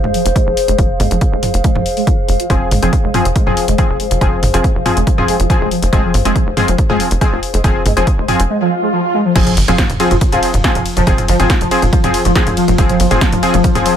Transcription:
Already playing: G#4 C5 F5
0.04 F1 G#3, mid tom
0.14 F3, open hi-hat
0.25 F1, closed hi-hat
0.36 G#3, kick, closed hi-hat
0.47 F1 F3
0.57 open hi-hat
0.68 F1 G#3, closed hi-hat
0.78 F1 F3, kick, closed hi-hat
1.00 G1 G#3, mid tom, open hi-hat
1.11 F1 F3, closed hi-hat
1.21 kick, closed hi-hat
1.32 F1 G#3
1.43 F3, mid tom, open hi-hat
1.54 F1, closed hi-hat
1.64 G#3, kick, closed hi-hat
1.75 F1 F3, mid tom
1.86 open hi-hat
1.97 G#3, open hi-hat
2.07 F3, kick, closed hi-hat
2.28 F1 G#3, open hi-hat
2.40 F3, closed hi-hat
2.50 F1 F3 C4 G#4, kick, closed hi-hat
2.71 G1 G#3, mid tom, open hi-hat
2.82 F1 F3 C4 G#4, closed hi-hat
2.93 kick, closed hi-hat
3.04 F1 G#3
3.14 F3 C4 G#4, mid tom, open hi-hat
3.25 F1, closed hi-hat
3.36 G#3, kick, closed hi-hat
3.47 F1 F3 C4 G#4, mid tom
3.57 open hi-hat
3.68 F1 G#3, closed hi-hat
3.78 F3 C4 G#4, kick, closed hi-hat
3.89 F1
4.00 G#3, open hi-hat
4.11 F1 F3, closed hi-hat
4.21 F1 F3 C4 G#4, kick, closed hi-hat
4.32 G#3
4.43 G1 F3, mid tom, open hi-hat
4.54 F1 F3 C4 G#4, closed hi-hat
4.64 G#3, kick, closed hi-hat
4.75 F1 F3
4.86 F3 C4 G#4, mid tom, open hi-hat
4.97 F1 G#3, closed hi-hat
5.07 F3, kick, closed hi-hat
5.18 F1 F3 C4 G#4, mid tom
5.28 G#3, open hi-hat
5.40 F1 F3, closed hi-hat
5.50 F3 C4 G#4, kick, closed hi-hat
5.61 F1 G#3
5.71 F3, open hi-hat
5.82 F1, closed hi-hat
5.93 F1 F3 G#3 C4 G#4, kick, closed hi-hat
6.04 F3
6.14 G1, mid tom, open hi-hat
6.25 F1 F3 G#3 C4 G#4, closed hi-hat
6.36 F3, kick, closed hi-hat
6.47 F1
6.57 F3 G#3 C4 G#4, mid tom, open hi-hat
6.68 F1 F3, closed hi-hat
6.78 kick, closed hi-hat
6.90 F1 F3 G#3 C4 G#4, mid tom
7.00 F3, open hi-hat
7.11 F1, closed hi-hat
7.21 F3 G#3 C4 G#4, kick, closed hi-hat
7.32 F1 F3
7.43 open hi-hat
7.54 F1 G#3, closed hi-hat
7.64 F1 F3 C4 G#4, kick, closed hi-hat
7.86 G1 G#3, mid tom, open hi-hat
7.97 F1 F3 C4 G#4, closed hi-hat
8.07 kick, closed hi-hat
8.18 F1 G#3
8.28 F3 C4 G#4, mid tom, open hi-hat
8.39 F1, closed hi-hat
8.50 G#3, swell
8.61 F3
8.82 G#3
8.93 F3
9.14 G#3
9.25 F3
9.35 F1 F3 C4 G#4, kick, closed hi-hat, ride, crash, impact
9.47 F3, closed hi-hat, mid tom
9.57 G1, open hi-hat, ride
9.68 F1 F3 C4 G#4, closed hi-hat, mid tom
9.78 F3, kick, snare, closed hi-hat, ride
9.90 F1, closed hi-hat, mid tom
10.00 F3 C4 G#4, open hi-hat, ride
10.11 F1 F3, closed hi-hat, mid tom
10.21 kick, closed hi-hat, ride
10.32 F1 F3 C4 G#4, closed hi-hat, mid tom
10.43 F3, open hi-hat, ride
10.54 F1, closed hi-hat, mid tom
10.64 F3 C4 G#4, kick, snare, closed hi-hat, ride
10.75 F1 F3, closed hi-hat, mid tom
10.86 open hi-hat, ride
10.97 F1 F3, closed hi-hat, mid tom
11.07 F1 F3 C4 G#4, kick, closed hi-hat, ride
11.18 closed hi-hat, mid tom
11.28 G1 F3, open hi-hat, ride
11.40 F1 F3 C4 G#4, closed hi-hat, mid tom
11.50 kick, snare, closed hi-hat, ride
11.61 F1 F3, closed hi-hat, mid tom
11.71 F3 C4 G#4, open hi-hat, ride
11.82 F1, closed hi-hat, mid tom
11.93 F3, kick, closed hi-hat, ride
12.04 F1 F3 C4 G#4, closed hi-hat, mid tom
12.14 open hi-hat, ride
12.25 F1 F3, closed hi-hat, mid tom
12.36 F3 C4 G#4, kick, snare, closed hi-hat, ride
12.47 F1, closed hi-hat, mid tom
12.57 F3, open hi-hat, ride
12.68 F1 F3, closed hi-hat, mid tom
12.78 F1 F3 C4 G#4, kick, closed hi-hat, ride
12.89 F3, closed hi-hat, mid tom
13.00 G1 F3, open hi-hat, ride
13.11 F1 F3 C4 G#4, closed hi-hat, mid tom
13.21 F3, kick, snare, closed hi-hat, ride
13.32 F1 F3, closed hi-hat, mid tom
13.43 F3 C4 G#4, open hi-hat, ride
13.54 F1 F3, closed hi-hat, mid tom
13.64 F3, kick, closed hi-hat, ride
13.75 F1 F3 C4 G#4, closed hi-hat, mid tom
13.86 F3, open hi-hat, ride

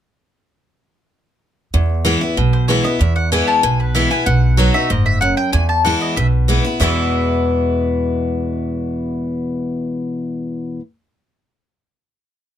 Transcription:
1.74 E2
2.05 E3 G#3 B3 E4
2.21 B3 E4
2.37 B1 B2
2.53 C5
2.68 E3 G#3 B3 E4 C#5
2.84 B3 E4 D#5
2.99 E2 E5
3.16 F#5
3.32 E3 G#3 B3 E4 G#5
3.48 A5
3.63 B1 B2 G#5
3.80 B4
3.95 E3 G#3 B3 E4 E5
4.11 B3 E4 G#5
4.26 B1 B2 F#5
4.57 F#3 B3 D#4 F#4
4.74 D#4 F#4 E5
4.90 F#1 G#2 D#5
5.06 E5
5.21 F#2 F#5
5.37 G5
5.53 E2 G#5
5.69 A5
5.85 E3 G#3 B3 E4 F#5
6.01 D#5
6.16 B1 B2 E5
6.48 E3 G#3 B3 E4
6.65 B3 E4
6.80 E2 B2 E3 G#3 B3 E4 E5

